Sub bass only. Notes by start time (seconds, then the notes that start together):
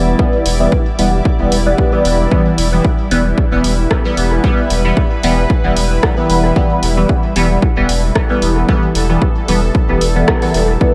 Already playing: E1
0.45 E1
0.99 E1
1.40 E1
1.52 E1
2.05 E1
2.58 E1
3.11 E1
3.52 E1
3.64 E1
4.17 E1
4.70 E1
5.23 E1
5.64 E1
5.76 E1
6.29 E1
6.83 E1
7.36 E1
7.76 E1
7.89 E1
8.42 E1
8.95 E1
9.48 E1
9.89 E1
10.01 E1
10.54 E1